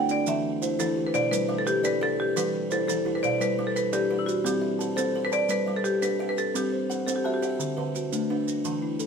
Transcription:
Already playing: kalimba D4 E4 F#4 A4, marimba F#5
0.09 kalimba D4, marimba D5, maracas
0.26 kalimba D3 E3, marimba E5, maracas
0.62 kalimba E4 C5, maracas
0.79 kalimba E3 E4, marimba A4, maracas
0.96 kalimba G4
1.07 marimba B4
1.14 kalimba B2 C5, marimba D5, maracas
1.31 kalimba G3, marimba B4, maracas
1.49 kalimba G3 E5
1.58 marimba A4
1.66 marimba G4, kalimba B4, maracas
1.83 kalimba D4 A4 D5, marimba B4, maracas
2.02 kalimba G4 B4, marimba A4
2.19 kalimba G4, marimba G4
2.36 kalimba E3 G3, marimba B4, maracas
2.53 kalimba G4
2.71 kalimba E4 C5, marimba A4, maracas
2.88 kalimba E3 E4, marimba A4, maracas
3.05 kalimba E4 G4
3.15 marimba B4
3.23 kalimba B2 C5, marimba D5, maracas
3.40 kalimba G3, marimba B4, maracas
3.59 kalimba G3
3.67 marimba A4
3.76 kalimba B4, marimba B4, maracas
3.93 kalimba D4 A4 D5, marimba G4, maracas
4.10 kalimba G4 B4
4.19 marimba E4
4.26 marimba F#4, kalimba G4, maracas
4.44 kalimba G3 C4, marimba G4, maracas
4.62 kalimba E5
4.79 kalimba C5 A5, maracas
4.96 kalimba C4 C5, marimba A4, maracas
5.16 kalimba C5
5.25 marimba B4
5.32 kalimba G4 A5, marimba D5, maracas
5.49 kalimba G3, marimba B4, maracas
5.66 kalimba G3 E5
5.77 marimba A4
5.84 marimba G4, maracas
6.02 kalimba D4 G4, marimba B4, maracas
6.19 kalimba G4 E5
6.29 marimba B4
6.37 kalimba G4, marimba A4, maracas
6.54 kalimba G3 C4, marimba G4, maracas
6.72 kalimba C5
6.90 kalimba C5 F#5, maracas
7.07 kalimba C4 C5, marimba A4, maracas
7.16 marimba G4
7.24 marimba F#4, kalimba E5 A5
7.34 marimba G4
7.42 kalimba G4 C5, maracas
7.59 kalimba D3, maracas
7.77 kalimba D3 B4
7.95 kalimba F#4, maracas
8.12 kalimba A3 D4, maracas
8.30 kalimba D4 B4
8.47 kalimba D4, maracas
8.65 kalimba D3 E3, maracas
8.82 kalimba E4
9.00 kalimba A4, maracas

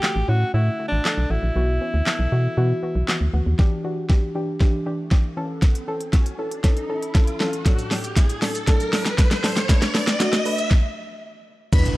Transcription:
Already playing: alto saxophone G4
0.03 synth pluck D3 A3 F#4, snare, clap
0.16 fm bass A1
0.28 fm bass A2, synth pluck D3 A3 C#4, alto saxophone F#4
0.54 fm bass A2, synth pluck D3 A3 F#4, alto saxophone E4
0.79 synth pluck D3 A3 F#4
0.88 alto saxophone D4
0.92 fm bass A1
1.05 synth pluck D3 A3 A4, snare, clap
1.17 fm bass B1
1.30 fm bass A1, synth pluck D3 A3 F#4, alto saxophone E4
1.43 fm bass A#1
1.55 fm bass B1, synth pluck E3 B3 F#4
1.81 synth pluck E3 B3 C#4
1.94 fm bass D2
2.06 synth pluck E3 B3 A4, snare, clap
2.19 fm bass B1
2.32 fm bass B2, synth pluck E3 B3 F#4
2.57 fm bass B2, synth pluck E3 B3 F#4
2.83 synth pluck E3 B3 F#4
2.96 fm bass B1
3.08 synth pluck E3 B3 F#4, snare, clap
3.21 fm bass D2
3.33 fm bass D2, synth pluck E3 B3 F#4
3.46 fm bass D#2
3.59 synth pluck E3 D4 G4, kick, snare, riser
3.84 synth pluck E3 D4 F#4
4.10 synth pluck E3 D4 G4, kick, snare
4.35 synth pluck E3 D4 G4
4.61 synth pluck E3 D4 G4, kick, snare
4.86 synth pluck E3 D4 G4
5.11 synth pluck E3 D4 G4, kick, snare
5.37 synth pluck E3 C#4 A4
5.62 kick, snare, closed hi-hat
5.75 closed hi-hat
5.87 synth pluck E3 C#4 A4
6.00 closed hi-hat
6.13 synth pluck E3 C#4 F#4, kick, snare, closed hi-hat
6.26 closed hi-hat
6.38 synth pluck E3 C#4 A4
6.51 closed hi-hat
6.64 synth pluck E3 C#4 A4, kick, snare, closed hi-hat
6.77 closed hi-hat
6.89 synth pluck E3 C#4 A4
7.02 closed hi-hat
7.15 synth pluck E3 C#4 A4, kick, snare, closed hi-hat
7.27 closed hi-hat
7.40 synth pluck E3 C#4 A4, snare
7.53 closed hi-hat
7.66 synth pluck A2 F#3 D4 A4, kick, snare, closed hi-hat, shaker
7.79 closed hi-hat, shaker
7.91 synth pluck A2 F#3 D4 A4, snare, open hi-hat, shaker
8.04 closed hi-hat, shaker
8.16 synth pluck A2 F#3 D4 E4, kick, snare, closed hi-hat, shaker
8.29 closed hi-hat, shaker
8.42 synth pluck A2 F#3 D4 A4, snare, open hi-hat, shaker
8.55 closed hi-hat, shaker
8.67 synth pluck A2 F#3 D4 A4, kick, snare, closed hi-hat, shaker
8.80 closed hi-hat, shaker
8.93 synth pluck A2 F#3 D4 A4, snare, open hi-hat, shaker
9.06 snare, closed hi-hat, shaker
9.18 synth pluck A2 F#3 D4 A4, kick, snare, closed hi-hat, shaker
9.31 snare, closed hi-hat, shaker
9.44 synth pluck A2 F#3 D4 A4, snare, open hi-hat, shaker
9.56 snare, closed hi-hat, shaker
9.69 synth pluck A3 D4 B4, kick, snare, closed hi-hat, shaker
9.82 snare, closed hi-hat, shaker
9.94 synth pluck A3 D4 B4, snare, open hi-hat, shaker
10.07 snare, closed hi-hat, shaker
10.20 synth pluck A3 D4 F#4, snare, closed hi-hat, shaker
10.33 snare, closed hi-hat, shaker
10.45 synth pluck A3 D4 B4, open hi-hat, shaker
10.58 closed hi-hat, shaker
10.71 kick, snare
11.72 fm bass E2, synth pluck G3 D4 E4 B4, digital synth lead B4, kick, closed hi-hat, crash, impact, shaker
11.86 closed hi-hat, shaker

